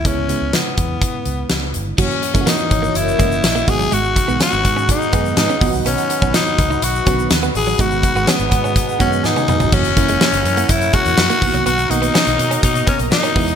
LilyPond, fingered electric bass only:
\new Staff \with { instrumentName = "Fingered electric bass" } { \clef bass \time 4/4 \key b \major \tempo 4 = 124 cis,8. cis,16 r8 e,8 r8 cis,8 cis,8 g,,8 | fis,,16 r8 fis,,16 r8 gis,,8 fis,,8 fis,,8 ais,,8 gis,,8 | gis,,8. b,,16 r16 gis,,16 gis,8. r16 fis,8 gis,16 r16 b,,16 c,16 | b,,16 r8 b,,16 r8 cis,8 b,,8 b,,8 dis,8 a,,8 |
gis,,8. gis,,16 r16 gis,,16 gis,8. r16 fis,8 gis,16 r16 b,16 g,,16 | fis,,8 fis,,8 r16 fis,,16 fis,8 fis,8 r16 e,16 fis,16 r16 b,,16 c,16 | b,,8 b,,8 r16 b,,16 b,8 b,8 r16 b,,16 r8 e,8 | }